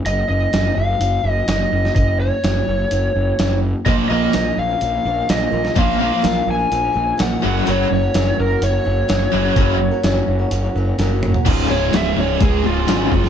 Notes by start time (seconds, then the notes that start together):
0.05 F#1 D#5, closed hi-hat
0.29 F#1 D#5
0.53 F#1, snare, closed hi-hat
0.75 F#1 F5
1.00 F#1, closed hi-hat
1.23 F#1
1.30 D#5
1.48 F#1 D#5, snare, closed hi-hat
1.72 F#1
1.85 snare
1.95 F#1 D#5, kick, closed hi-hat
2.20 C#5
2.44 F#1, snare, closed hi-hat
2.68 F#1
2.91 F#1, closed hi-hat
3.15 F#1
3.39 F#1, snare, closed hi-hat
3.86 A#1 A#2 F3 A#3 C#4 F4 A#4 D#5, kick, closed hi-hat
4.09 A#1 A#2 F3 A#3 D#5
4.22 A#3 C#4 F4 A#4
4.33 A#1 A#2 F3 A#3 C#4 F4 A#4, snare, closed hi-hat
4.58 A#1 F5
4.69 A#3 C#4 F4 A#4
4.81 A#1, closed hi-hat
4.93 A#3 C#4 F4 A#4
5.05 A#1 A#3 C#4 F4 A#4
5.29 A#1 A#2 F3 A#3 C#4 F4 A#4 D#5, snare, closed hi-hat
5.51 A#1 A#3 C#4 F4 A#4
5.63 A#3 C#4 F4 A#4, snare
5.75 A#1 A#2 F3 A#3 C#4 F4 A#4 F5, kick, closed hi-hat
5.99 A#2 F3 A#3 F5
6.10 A#3 C#4 F4 A#4
6.21 A#1 A#2 F3 A#3 C#4 F4 A#4, snare, closed hi-hat
6.47 A#1 G#5
6.58 A#3 C#4 F4 A#4
6.72 A#1, closed hi-hat
6.82 A#3 C#4 F4 A#4
6.93 A#1 A#3 C#4 F4 A#4
7.17 A#1 A#2 F3 A#3 C#4 F4 A#4, snare, closed hi-hat
7.22 F#5
7.40 F#1 F#2 C#3 F#3 C#4 F#4 A#4
7.53 C#4 F#4 A#4
7.66 F#1 F#2 C#3 F#3 C#4 F#4 A#4, closed hi-hat
7.70 C#5
7.91 F#1 C#5
8.01 C#4 F#4 A#4
8.14 F#1 F#3 C#4 F#4 A#4, snare, closed hi-hat
8.39 F#1 A#4
8.48 C#4 F#4 A#4
8.61 F#1 C#5, closed hi-hat
8.72 C#4 F#4 A#4
8.84 F#1 F#3 C#4 F#4 A#4
9.08 F#1 F#3 C#4 F#4 A#4, snare, closed hi-hat
9.31 F#1 F#2 C#3 F#3 C#4 F#4 A#4
9.43 C#4 F#4 A#4
9.56 F#1 F#2 C#3 F#3 C#4 F#4 A#4, kick, closed hi-hat
9.91 C#4 F#4 A#4
10.03 F#1 F#3 C#4 F#4 A#4, snare, closed hi-hat
10.28 F#1
10.39 C#4 F#4 A#4
10.51 F#1, closed hi-hat
10.63 C#4 F#4 A#4
10.75 F#1 F#3 C#4 F#4 A#4
10.98 F#1 F#3 C#4 F#4 A#4, snare, closed hi-hat
11.22 F#3 C#4 F#4 A#4, mid tom
11.34 C#4 F#4 A#4, floor tom
11.45 C#1 C#2 G#2 C#3 G#3 C#4 F4 G#4, kick, closed hi-hat, crash
11.69 C#1 C#2 G#2 C#5
11.81 C#4 F4 G#4
11.92 C#1 C#2 G#2 C#3 G#3 C#4 F4, snare, closed hi-hat
11.96 G#4 E5
12.07 C#4 F4 G#4
12.16 C#1 C#2 G#2 G#3 C#4
12.20 F4 G#4 C#5
12.30 C#4 F4 G#4
12.40 C#2 G#2 G#4, kick, closed hi-hat
12.63 C#1 C#2 G#2 G#3 C#4 F4 G#4
12.87 G#1 C#2 G#2 C#3 G#3 C#4 F4 G#4, snare, closed hi-hat
13.11 F#1 C#2 G#2 G#3 C#4 F4 G#4, kick
13.24 F4 G#4, snare